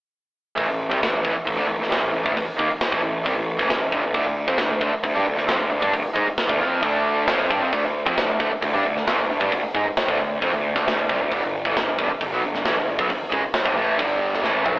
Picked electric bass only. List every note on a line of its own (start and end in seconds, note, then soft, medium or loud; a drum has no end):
0.57 0.68 A1 medium
0.69 0.90 A1 medium
0.91 1.01 C2 medium
1.02 1.13 A1 medium
1.14 1.24 A1 medium
1.25 1.35 A1 medium
1.35 muted picked electric bass stroke soft
1.47 1.56 A1 medium
1.57 1.67 D2 loud
1.68 1.78 A1 medium
1.79 1.89 A1 medium
1.90 2.01 C2 medium
2.01 2.12 A1 medium
2.14 2.24 A1 medium
2.26 2.36 D2 medium
2.37 2.46 A1 medium
2.47 muted picked electric bass stroke soft
2.59 2.69 D#2 medium
2.70 muted picked electric bass stroke soft
2.92 3.02 A1 loud
3.03 3.24 A1 medium
3.26 3.36 C2 medium
3.36 3.57 A1 medium
3.60 3.69 A1 loud
3.70 3.91 A1 medium
3.92 4.03 G1 loud
4.04 4.14 A1 medium
4.14 4.25 D2 medium
4.26 4.47 D2 medium
4.48 4.59 F2 medium
4.60 4.70 D2 medium
4.71 4.80 D2 medium
4.81 4.92 D2 medium
4.93 muted picked electric bass stroke soft
5.04 5.14 D2 medium
5.16 5.26 G2 loud
5.27 5.37 D2 medium
5.38 5.49 D2 medium
5.50 5.60 F2 medium
5.61 5.71 D2 medium
5.72 5.82 D2 medium
5.82 5.93 G2 medium
5.94 6.04 D2 medium
6.05 muted picked electric bass stroke soft
6.16 6.26 G#2 medium
6.27 muted picked electric bass stroke soft
6.50 6.60 D2 medium
6.62 6.82 F2 medium
6.83 7.25 D2 medium
7.28 7.49 F2 medium
7.51 7.61 G2 medium
7.62 7.72 F2 medium
7.73 7.83 D2 medium
7.86 8.06 D2 medium
8.07 8.17 F2 medium
8.18 8.28 D2 medium
8.30 8.40 D2 medium
8.40 8.50 D2 medium
8.52 muted picked electric bass stroke soft
8.63 8.73 D2 medium
8.74 8.84 G2 loud
8.85 8.96 D2 medium
8.97 9.07 D2 medium
9.08 9.18 F2 medium
9.19 9.29 D2 medium
9.30 9.40 D2 medium
9.41 9.51 G2 medium
9.52 9.62 D2 medium
9.64 muted picked electric bass stroke soft
9.74 9.85 G#2 medium
9.85 muted picked electric bass stroke soft
10.09 10.19 D2 medium
10.19 10.40 D2 medium
10.42 10.52 F2 medium
10.54 10.74 D2 medium
10.76 10.86 D2 medium
10.87 11.07 D2 medium
11.10 11.19 C2 loud
11.20 11.30 D2 medium
11.32 11.42 G1 medium
11.42 11.63 G1 medium
11.65 11.75 A1 medium
11.76 11.86 G1 medium
11.87 11.97 G1 medium
11.99 12.09 G1 medium
12.10 muted picked electric bass stroke soft
12.21 12.31 G1 medium
12.32 12.42 B1 loud
12.43 12.53 G1 medium
12.53 12.64 G1 medium
12.65 12.75 A1 medium
12.77 12.87 G1 medium
12.88 12.98 G1 medium
12.99 13.09 B1 medium
13.11 13.20 G1 medium
13.20 muted picked electric bass stroke soft
13.32 13.42 C#2 medium
13.44 muted picked electric bass stroke soft
13.66 13.75 G1 medium
13.76 13.97 A1 medium
13.99 14.41 G1 medium
14.43 14.64 A1 medium
14.66 14.76 B1 medium